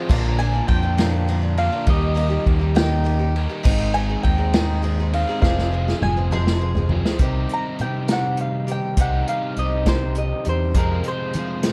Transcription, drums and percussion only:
0.10 kick, crash
0.40 ride
0.68 kick, ride
0.98 snare, ride
1.28 ride
1.57 ride
1.87 kick, ride
2.17 ride
2.46 kick, ride
2.76 snare, ride
3.06 ride
3.36 ride
3.65 kick, crash
3.95 ride
4.24 kick, ride
4.53 snare, ride
4.84 ride
5.13 ride
5.42 kick, snare
5.59 snare
5.88 snare
6.02 mid tom
6.31 mid tom
6.47 snare
6.75 floor tom
6.89 floor tom
7.05 snare
7.19 kick, closed hi-hat
7.49 closed hi-hat
7.78 closed hi-hat
8.08 snare, closed hi-hat
8.37 closed hi-hat
8.68 closed hi-hat
8.97 kick, closed hi-hat
9.27 closed hi-hat
9.56 closed hi-hat
9.86 kick, snare, closed hi-hat
10.15 closed hi-hat
10.45 closed hi-hat
10.74 kick, closed hi-hat
11.03 closed hi-hat
11.33 closed hi-hat
11.63 snare, closed hi-hat

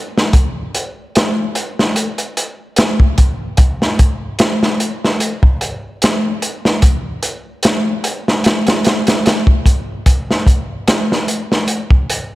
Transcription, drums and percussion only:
0.18 snare
0.33 kick, closed hi-hat
0.75 closed hi-hat
1.15 snare, closed hi-hat
1.55 closed hi-hat
1.79 snare
1.96 closed hi-hat
2.18 closed hi-hat
2.37 closed hi-hat
2.76 snare, closed hi-hat
3.00 kick
3.18 kick, closed hi-hat
3.57 kick, closed hi-hat
3.82 snare
3.99 kick, closed hi-hat
4.39 snare, closed hi-hat
4.63 snare
4.80 closed hi-hat
5.04 snare
5.20 closed hi-hat
5.43 kick
5.61 closed hi-hat
6.02 snare, closed hi-hat
6.42 closed hi-hat
6.65 snare
6.82 kick, closed hi-hat
7.23 closed hi-hat
7.63 snare, closed hi-hat
8.04 closed hi-hat
8.28 snare
8.44 snare, closed hi-hat
8.67 snare, closed hi-hat
8.84 snare, closed hi-hat
9.07 snare, closed hi-hat
9.26 snare, closed hi-hat
9.47 kick
9.66 kick, closed hi-hat
10.06 kick, closed hi-hat
10.31 snare
10.47 kick, closed hi-hat
10.88 snare, closed hi-hat
11.12 snare
11.28 closed hi-hat
11.52 snare
11.68 closed hi-hat
11.90 kick
12.10 closed hi-hat

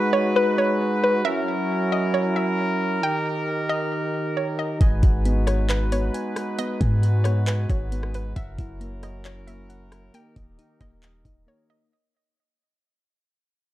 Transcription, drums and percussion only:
4.81 kick, closed hi-hat
5.03 kick, closed hi-hat
5.25 closed hi-hat
5.47 cross-stick, closed hi-hat
5.70 clap, closed hi-hat
5.92 closed hi-hat
6.14 closed hi-hat
6.36 cross-stick, closed hi-hat
6.59 closed hi-hat
6.81 kick, closed hi-hat
7.03 closed hi-hat
7.25 cross-stick, closed hi-hat
7.47 clap, closed hi-hat
7.69 kick, closed hi-hat
7.92 closed hi-hat
8.03 cross-stick
8.14 closed hi-hat
8.36 kick, closed hi-hat
8.58 kick, closed hi-hat
8.81 closed hi-hat
9.03 cross-stick, closed hi-hat
9.25 clap, closed hi-hat
9.48 closed hi-hat
9.70 closed hi-hat
9.92 cross-stick, closed hi-hat
10.14 closed hi-hat
10.36 kick, closed hi-hat
10.59 closed hi-hat
10.81 kick, cross-stick, closed hi-hat
11.03 clap, closed hi-hat
11.25 kick, closed hi-hat

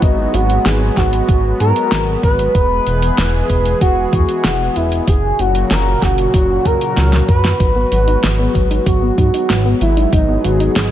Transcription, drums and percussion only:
0.02 kick, closed hi-hat
0.34 closed hi-hat
0.50 closed hi-hat
0.66 snare, closed hi-hat
0.97 kick, snare, closed hi-hat
1.13 closed hi-hat
1.29 kick, closed hi-hat
1.60 closed hi-hat
1.76 closed hi-hat
1.92 snare, closed hi-hat
2.23 kick, closed hi-hat
2.39 closed hi-hat
2.55 kick, closed hi-hat
2.87 closed hi-hat
3.02 closed hi-hat
3.18 snare, closed hi-hat
3.50 kick, closed hi-hat
3.65 closed hi-hat
3.81 kick, closed hi-hat
4.13 kick, closed hi-hat
4.29 closed hi-hat
4.44 snare, closed hi-hat
4.76 closed hi-hat
4.92 closed hi-hat
5.08 kick, closed hi-hat
5.39 closed hi-hat
5.55 closed hi-hat
5.71 snare, closed hi-hat
6.02 kick, snare, closed hi-hat
6.18 closed hi-hat
6.34 kick, closed hi-hat
6.65 kick, closed hi-hat
6.81 closed hi-hat
6.97 snare, closed hi-hat
7.13 snare
7.29 kick, closed hi-hat
7.45 snare, closed hi-hat
7.60 kick, closed hi-hat
7.92 closed hi-hat
8.08 closed hi-hat
8.24 snare, closed hi-hat
8.55 kick, closed hi-hat
8.71 closed hi-hat
8.86 kick, closed hi-hat
9.18 kick, closed hi-hat
9.34 closed hi-hat
9.50 snare, closed hi-hat
9.81 closed hi-hat
9.97 closed hi-hat
10.13 kick, closed hi-hat
10.44 closed hi-hat
10.60 closed hi-hat
10.76 snare, closed hi-hat

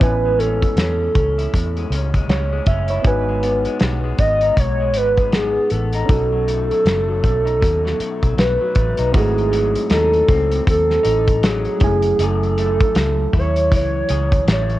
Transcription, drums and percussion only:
0.01 kick, closed hi-hat
0.40 closed hi-hat
0.63 kick, closed hi-hat
0.77 snare, closed hi-hat
1.15 kick, closed hi-hat
1.39 closed hi-hat
1.54 kick, closed hi-hat
1.77 closed hi-hat
1.92 closed hi-hat
2.14 kick, closed hi-hat
2.29 snare, closed hi-hat
2.66 kick, closed hi-hat
2.88 closed hi-hat
3.04 kick, closed hi-hat
3.43 closed hi-hat
3.65 closed hi-hat
3.80 snare, closed hi-hat
4.18 kick, closed hi-hat
4.41 closed hi-hat
4.57 kick, closed hi-hat
4.94 closed hi-hat
5.17 kick, closed hi-hat
5.32 snare, closed hi-hat
5.70 closed hi-hat
5.93 closed hi-hat
6.09 kick, closed hi-hat
6.48 closed hi-hat
6.71 closed hi-hat
6.86 snare, closed hi-hat
7.24 kick, closed hi-hat
7.47 closed hi-hat
7.62 kick, closed hi-hat
7.86 snare
8.00 closed hi-hat
8.23 kick, closed hi-hat
8.38 snare, closed hi-hat
8.75 kick, closed hi-hat
8.97 closed hi-hat
9.14 kick, closed hi-hat
9.38 closed hi-hat
9.53 closed hi-hat
9.76 closed hi-hat
9.90 snare, closed hi-hat
10.13 closed hi-hat
10.28 kick, closed hi-hat
10.51 closed hi-hat
10.67 kick, closed hi-hat
10.90 snare
11.05 closed hi-hat
11.27 kick, closed hi-hat
11.43 snare, closed hi-hat
11.65 closed hi-hat
11.80 kick, closed hi-hat
12.02 closed hi-hat
12.19 closed hi-hat
12.43 closed hi-hat
12.58 closed hi-hat
12.80 kick, closed hi-hat
12.95 snare, closed hi-hat
13.33 kick, closed hi-hat
13.56 closed hi-hat
13.72 kick, closed hi-hat
14.09 closed hi-hat
14.32 kick, closed hi-hat
14.48 snare, closed hi-hat
14.70 closed hi-hat

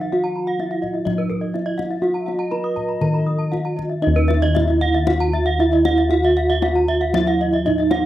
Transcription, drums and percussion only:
0.01 kendang slap
0.25 kendang slap
0.36 kendang slap
0.59 kendang high
0.84 kendang slap, kendang low
0.95 kendang slap
1.07 kendang slap, kendang high, kendang low
1.19 kendang slap
1.31 kendang slap, kendang low
1.56 kendang high
1.79 kendang slap, kendang high, kendang low
1.92 kendang slap
2.04 kendang high
2.16 kendang slap
2.28 kendang slap, kendang high
2.52 kendang high
2.77 kendang slap, kendang low
3.01 kendang slap, kendang low
3.15 kendang slap
3.27 kendang slap
3.53 kendang slap, kendang high, kendang low
3.79 kendang slap, kendang low
3.92 kendang slap
4.18 kendang slap
4.30 kendang high
4.44 kendang slap
4.56 kendang high, kendang low
4.70 kendang slap
4.96 kendang slap
5.07 kendang high, kendang low
5.21 kendang slap
5.72 kendang slap
5.85 kendang high
5.97 kendang slap
6.23 kendang slap
6.50 kendang slap
6.62 kendang high
6.76 kendang slap
7.01 kendang slap
7.14 kendang high, kendang low
7.27 kendang slap
7.53 kendang slap
7.67 kendang low
7.79 kendang slap
7.91 kendang high

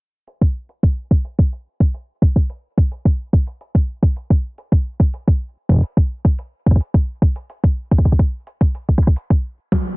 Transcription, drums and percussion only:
0.27 closed hi-hat
0.41 kick
0.69 closed hi-hat
0.83 kick, closed hi-hat
1.11 kick
1.25 closed hi-hat
1.39 kick, closed hi-hat
1.53 closed hi-hat
1.80 kick, closed hi-hat
1.94 closed hi-hat
2.22 kick
2.36 kick, closed hi-hat
2.50 closed hi-hat
2.78 kick
2.92 closed hi-hat
3.05 kick, closed hi-hat
3.33 kick
3.47 closed hi-hat
3.61 closed hi-hat
3.75 kick, closed hi-hat
4.03 kick, closed hi-hat
4.16 closed hi-hat
4.30 kick
4.58 closed hi-hat
4.72 kick, closed hi-hat
5.00 kick
5.14 closed hi-hat
5.28 kick, closed hi-hat
5.69 kick, closed hi-hat
5.72 kick
5.74 kick
5.76 kick
5.78 kick
5.81 kick, closed hi-hat
5.97 kick, closed hi-hat
6.25 kick, closed hi-hat
6.39 closed hi-hat
6.66 kick
6.71 kick
6.76 kick
6.80 closed hi-hat
6.94 kick, closed hi-hat
7.22 kick
7.36 closed hi-hat
7.50 closed hi-hat
7.64 kick, closed hi-hat
7.91 kick, closed hi-hat
7.98 kick
8.05 kick, closed hi-hat
8.12 kick
8.19 kick, closed hi-hat
8.47 closed hi-hat
8.61 kick, closed hi-hat
8.75 closed hi-hat
8.89 kick
8.98 kick
9.02 closed hi-hat
9.07 kick
9.16 closed hi-hat
9.30 kick
9.72 kick, snare, closed hi-hat

